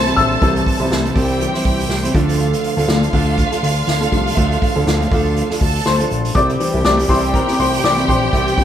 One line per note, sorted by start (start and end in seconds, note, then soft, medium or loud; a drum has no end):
0.00 0.12 C2 medium
0.00 0.41 E3 medium
0.00 0.41 G3 soft
0.00 0.42 C4 medium
0.00 1.12 A4 medium
0.00 2.16 A#4 medium
0.00 2.17 C5 medium
0.00 2.16 D5 medium
0.00 1.12 A5 loud
0.00 2.17 A#5 medium
0.00 2.16 C6 loud
0.00 2.16 D6 medium
0.05 0.40 G3 medium
0.05 0.41 C4 medium
0.05 0.42 E4 medium
0.05 0.41 C5 medium
0.05 hi-hat pedal medium
0.16 0.37 A#1 medium
0.16 1.12 E5 medium
0.16 1.12 E6 loud
0.16 kick medium
0.16 hi-hat pedal medium
0.16 open hi-hat medium
0.31 open hi-hat medium
0.41 0.62 C2 loud
0.41 1.12 E3 medium
0.41 0.80 G3 medium
0.41 1.12 G3 soft
0.41 1.12 C4 medium
0.41 0.81 C4 medium
0.41 0.80 E4 medium
0.41 0.79 C5 medium
0.41 kick loud
0.41 hi-hat pedal medium
0.41 open hi-hat medium
0.56 hi-hat pedal medium
0.67 kick loud
0.67 hi-hat pedal medium
0.67 open hi-hat medium
0.80 0.89 C2 loud
0.80 1.14 G3 medium
0.80 1.14 C4 medium
0.80 1.15 E4 medium
0.80 1.16 C5 medium
0.80 open hi-hat medium
0.91 1.11 C2 loud
0.91 snare loud
0.91 hi-hat pedal medium
0.91 open hi-hat medium
1.05 hi-hat pedal medium
1.15 1.47 C2 loud
1.15 1.54 G3 medium
1.15 1.54 C4 medium
1.15 1.54 E4 medium
1.15 2.12 G4 medium
1.15 1.52 C5 medium
1.15 2.12 G5 medium
1.15 kick loud
1.15 hi-hat pedal medium
1.15 open hi-hat medium
1.29 open hi-hat medium
1.40 1.63 E3 soft
1.40 1.63 G3 soft
1.40 1.64 C4 medium
1.40 hi-hat pedal medium
1.40 open hi-hat medium
1.54 2.04 G3 soft
1.54 2.03 C4 soft
1.54 2.03 E4 medium
1.54 2.02 C5 medium
1.54 snare soft
1.54 hi-hat pedal medium
1.54 open hi-hat soft
1.65 1.86 C2 loud
1.65 kick medium
1.65 hi-hat pedal medium
1.65 open hi-hat medium
1.79 hi-hat pedal medium
1.79 open hi-hat medium
1.89 2.10 C2 loud
1.89 snare loud
1.89 hi-hat pedal medium
1.89 open hi-hat medium
2.03 2.14 G3 medium
2.03 2.14 C4 medium
2.03 2.15 E4 medium
2.03 2.14 C5 medium
2.03 hi-hat pedal medium
2.03 open hi-hat soft
2.14 2.55 D2 loud
2.14 2.77 D3 medium
2.14 2.87 F3 medium
2.14 2.78 A3 medium
2.14 2.87 A3 soft
2.14 2.78 D4 medium
2.14 2.88 D4 medium
2.14 5.57 F4 medium
2.14 2.77 F4 medium
2.14 2.75 A4 loud
2.14 5.57 F5 loud
2.14 kick loud
2.14 hi-hat pedal medium
2.14 open hi-hat medium
2.29 hi-hat pedal medium
2.29 open hi-hat medium
2.40 hi-hat pedal medium
2.40 open hi-hat medium
2.53 hi-hat pedal medium
2.53 open hi-hat soft
2.64 hi-hat pedal medium
2.64 open hi-hat medium
2.77 2.86 D2 loud
2.77 3.13 D4 soft
2.77 3.14 F4 medium
2.77 3.13 A4 medium
2.77 hi-hat pedal medium
2.77 open hi-hat soft
2.88 3.09 D2 loud
2.88 3.11 F3 medium
2.88 3.11 A3 soft
2.88 3.11 D4 medium
2.88 snare loud
2.88 hi-hat pedal medium
2.88 open hi-hat medium
3.03 hi-hat pedal medium
3.13 3.45 D2 loud
3.13 3.52 A3 medium
3.13 3.52 D4 medium
3.13 3.52 F4 medium
3.13 3.50 A4 medium
3.13 kick loud
3.13 hi-hat pedal medium
3.13 open hi-hat medium
3.27 open hi-hat medium
3.37 kick loud
3.37 hi-hat pedal medium
3.37 open hi-hat medium
3.51 4.02 D4 soft
3.51 4.01 F4 medium
3.51 3.99 A4 medium
3.51 snare soft
3.51 hi-hat pedal medium
3.63 3.83 D2 loud
3.63 hi-hat pedal medium
3.63 open hi-hat medium
3.77 open hi-hat medium
3.87 4.08 D2 medium
3.87 snare loud
3.87 hi-hat pedal medium
3.87 open hi-hat loud
4.01 4.36 D4 medium
4.01 4.37 F4 medium
4.01 4.37 A4 medium
4.01 hi-hat pedal medium
4.01 open hi-hat soft
4.12 4.33 C2 medium
4.12 4.83 F3 medium
4.12 4.83 A3 medium
4.12 4.83 D4 medium
4.12 kick medium
4.12 hi-hat pedal medium
4.12 open hi-hat medium
4.27 hi-hat pedal medium
4.27 open hi-hat medium
4.36 4.58 D2 loud
4.36 4.75 A3 medium
4.36 4.76 D4 medium
4.36 4.75 F4 medium
4.36 4.74 A4 medium
4.36 kick loud
4.36 hi-hat pedal medium
4.36 open hi-hat medium
4.51 hi-hat pedal medium
4.62 kick loud
4.62 hi-hat pedal medium
4.62 open hi-hat medium
4.75 4.85 D2 loud
4.75 5.11 D4 soft
4.75 5.12 F4 medium
4.75 5.11 A4 medium
4.75 open hi-hat soft
4.87 5.07 D2 loud
4.87 5.09 F3 medium
4.87 5.09 A3 medium
4.87 5.09 D4 medium
4.87 snare loud
4.87 hi-hat pedal medium
4.87 open hi-hat medium
5.01 hi-hat pedal medium
5.11 5.43 D2 loud
5.11 5.50 A3 medium
5.11 5.50 D4 medium
5.11 5.50 F4 medium
5.11 5.48 A4 medium
5.11 kick loud
5.11 hi-hat pedal medium
5.11 open hi-hat medium
5.25 open hi-hat medium
5.36 hi-hat pedal medium
5.36 open hi-hat loud
5.50 6.00 D4 soft
5.50 5.99 F4 medium
5.50 5.98 A4 medium
5.50 snare soft
5.50 hi-hat pedal medium
5.50 open hi-hat soft
5.61 5.81 D2 loud
5.61 6.09 A4 medium
5.61 6.10 A5 medium
5.61 kick medium
5.61 hi-hat pedal medium
5.61 open hi-hat medium
5.75 hi-hat pedal medium
5.75 open hi-hat medium
5.86 6.06 D2 medium
5.86 6.33 C5 medium
5.86 6.32 C6 medium
5.86 snare loud
5.86 hi-hat pedal medium
5.86 open hi-hat medium
5.99 6.35 D4 medium
5.99 6.35 F4 medium
5.99 6.35 A4 medium
5.99 hi-hat pedal medium
5.99 open hi-hat soft
6.10 6.31 A#1 medium
6.10 hi-hat pedal medium
6.10 open hi-hat medium
6.25 hi-hat pedal medium
6.25 open hi-hat medium
6.35 6.55 C2 loud
6.35 6.73 G3 medium
6.35 6.74 C4 medium
6.35 6.73 E4 medium
6.35 8.64 G4 medium
6.35 6.72 G4 medium
6.35 6.82 D5 medium
6.35 8.64 G5 loud
6.35 6.81 D6 loud
6.35 kick loud
6.35 hi-hat pedal medium
6.35 open hi-hat medium
6.49 hi-hat pedal medium
6.60 7.82 E3 medium
6.60 7.83 G3 medium
6.60 7.83 C4 medium
6.60 hi-hat pedal medium
6.60 open hi-hat medium
6.73 6.83 C2 loud
6.73 7.08 C4 soft
6.73 7.09 E4 medium
6.73 7.09 G4 medium
6.73 open hi-hat soft
6.84 7.05 C2 loud
6.84 7.08 D5 medium
6.84 7.10 D6 loud
6.84 snare loud
6.84 hi-hat pedal medium
6.84 open hi-hat medium
6.99 hi-hat pedal medium
6.99 open hi-hat soft
7.09 7.41 C2 loud
7.09 7.47 G3 medium
7.09 7.48 C4 medium
7.09 7.47 E4 medium
7.09 7.46 G4 medium
7.09 7.33 C5 medium
7.09 7.32 C6 loud
7.09 kick medium
7.09 hi-hat pedal medium
7.09 open hi-hat medium
7.23 hi-hat pedal medium
7.23 open hi-hat medium
7.33 7.40 A#4 medium
7.33 7.39 A#5 medium
7.33 kick loud
7.33 hi-hat pedal medium
7.33 open hi-hat medium
7.47 7.98 C4 soft
7.47 7.96 E4 medium
7.47 7.95 G4 medium
7.47 snare soft
7.47 hi-hat pedal medium
7.47 open hi-hat soft
7.52 7.58 D6 medium
7.59 7.79 C2 loud
7.59 7.82 C5 medium
7.59 7.85 C6 medium
7.59 hi-hat pedal medium
7.59 open hi-hat medium
7.73 hi-hat pedal medium
7.73 open hi-hat medium
7.84 8.04 C2 medium
7.84 8.06 E3 medium
7.84 8.06 G3 soft
7.84 8.06 C4 medium
7.84 7.90 D5 medium
7.84 7.90 D6 loud
7.84 snare loud
7.84 hi-hat pedal medium
7.84 open hi-hat medium
7.96 8.31 C4 medium
7.96 8.32 E4 medium
7.96 8.32 G4 medium
7.96 hi-hat pedal medium
8.08 8.29 A#1 medium
8.08 8.64 C5 medium
8.08 8.64 C6 medium
8.08 kick medium
8.08 hi-hat pedal medium
8.08 open hi-hat medium
8.23 open hi-hat medium
8.32 8.53 C2 loud
8.32 8.64 G3 medium
8.32 8.64 C4 medium
8.32 8.64 E4 medium
8.32 8.64 G4 medium
8.32 kick loud
8.32 hi-hat pedal medium
8.32 open hi-hat medium
8.47 hi-hat pedal medium
8.58 8.64 E3 medium
8.58 8.64 G3 medium
8.58 8.64 C4 medium
8.58 kick loud
8.58 hi-hat pedal medium
8.58 open hi-hat medium